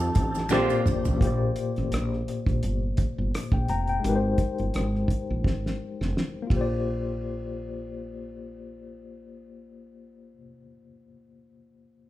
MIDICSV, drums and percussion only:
0, 0, Header, 1, 2, 480
1, 0, Start_track
1, 0, Key_signature, -2, "major"
1, 0, Tempo, 705882
1, 821, Time_signature, 4, 2, 24, 8
1, 8227, End_track
2, 0, Start_track
2, 0, Title_t, "Drums"
2, 101, Note_on_c, 9, 82, 53
2, 103, Note_on_c, 9, 42, 76
2, 107, Note_on_c, 9, 36, 97
2, 169, Note_off_c, 9, 82, 0
2, 171, Note_off_c, 9, 42, 0
2, 175, Note_off_c, 9, 36, 0
2, 236, Note_on_c, 9, 82, 47
2, 254, Note_on_c, 9, 38, 38
2, 304, Note_off_c, 9, 82, 0
2, 322, Note_off_c, 9, 38, 0
2, 335, Note_on_c, 9, 26, 69
2, 335, Note_on_c, 9, 82, 77
2, 356, Note_on_c, 9, 38, 53
2, 403, Note_off_c, 9, 26, 0
2, 403, Note_off_c, 9, 82, 0
2, 424, Note_off_c, 9, 38, 0
2, 475, Note_on_c, 9, 82, 41
2, 543, Note_off_c, 9, 82, 0
2, 583, Note_on_c, 9, 45, 94
2, 588, Note_on_c, 9, 82, 52
2, 651, Note_off_c, 9, 45, 0
2, 656, Note_off_c, 9, 82, 0
2, 715, Note_on_c, 9, 82, 50
2, 717, Note_on_c, 9, 43, 77
2, 783, Note_off_c, 9, 82, 0
2, 785, Note_off_c, 9, 43, 0
2, 822, Note_on_c, 9, 36, 106
2, 831, Note_on_c, 9, 42, 98
2, 890, Note_off_c, 9, 36, 0
2, 899, Note_off_c, 9, 42, 0
2, 1059, Note_on_c, 9, 42, 76
2, 1127, Note_off_c, 9, 42, 0
2, 1199, Note_on_c, 9, 42, 29
2, 1213, Note_on_c, 9, 37, 27
2, 1267, Note_off_c, 9, 42, 0
2, 1281, Note_off_c, 9, 37, 0
2, 1305, Note_on_c, 9, 42, 89
2, 1319, Note_on_c, 9, 37, 103
2, 1373, Note_off_c, 9, 42, 0
2, 1387, Note_off_c, 9, 37, 0
2, 1450, Note_on_c, 9, 37, 26
2, 1518, Note_off_c, 9, 37, 0
2, 1552, Note_on_c, 9, 42, 70
2, 1559, Note_on_c, 9, 37, 30
2, 1620, Note_off_c, 9, 42, 0
2, 1627, Note_off_c, 9, 37, 0
2, 1676, Note_on_c, 9, 36, 75
2, 1690, Note_on_c, 9, 42, 32
2, 1744, Note_off_c, 9, 36, 0
2, 1758, Note_off_c, 9, 42, 0
2, 1787, Note_on_c, 9, 42, 68
2, 1855, Note_off_c, 9, 42, 0
2, 2021, Note_on_c, 9, 42, 70
2, 2027, Note_on_c, 9, 36, 81
2, 2089, Note_off_c, 9, 42, 0
2, 2095, Note_off_c, 9, 36, 0
2, 2275, Note_on_c, 9, 42, 80
2, 2279, Note_on_c, 9, 37, 88
2, 2343, Note_off_c, 9, 42, 0
2, 2347, Note_off_c, 9, 37, 0
2, 2392, Note_on_c, 9, 36, 82
2, 2460, Note_off_c, 9, 36, 0
2, 2506, Note_on_c, 9, 42, 53
2, 2574, Note_off_c, 9, 42, 0
2, 2634, Note_on_c, 9, 42, 29
2, 2702, Note_off_c, 9, 42, 0
2, 2750, Note_on_c, 9, 42, 86
2, 2818, Note_off_c, 9, 42, 0
2, 2978, Note_on_c, 9, 42, 65
2, 2979, Note_on_c, 9, 36, 72
2, 3046, Note_off_c, 9, 42, 0
2, 3047, Note_off_c, 9, 36, 0
2, 3117, Note_on_c, 9, 42, 26
2, 3185, Note_off_c, 9, 42, 0
2, 3223, Note_on_c, 9, 42, 80
2, 3237, Note_on_c, 9, 37, 100
2, 3291, Note_off_c, 9, 42, 0
2, 3305, Note_off_c, 9, 37, 0
2, 3369, Note_on_c, 9, 37, 24
2, 3437, Note_off_c, 9, 37, 0
2, 3455, Note_on_c, 9, 36, 71
2, 3471, Note_on_c, 9, 42, 65
2, 3523, Note_off_c, 9, 36, 0
2, 3539, Note_off_c, 9, 42, 0
2, 3702, Note_on_c, 9, 36, 78
2, 3716, Note_on_c, 9, 38, 45
2, 3770, Note_off_c, 9, 36, 0
2, 3784, Note_off_c, 9, 38, 0
2, 3850, Note_on_c, 9, 38, 45
2, 3918, Note_off_c, 9, 38, 0
2, 4090, Note_on_c, 9, 38, 45
2, 4158, Note_off_c, 9, 38, 0
2, 4196, Note_on_c, 9, 38, 64
2, 4264, Note_off_c, 9, 38, 0
2, 4422, Note_on_c, 9, 36, 87
2, 4428, Note_on_c, 9, 51, 65
2, 4490, Note_off_c, 9, 36, 0
2, 4496, Note_off_c, 9, 51, 0
2, 8227, End_track
0, 0, End_of_file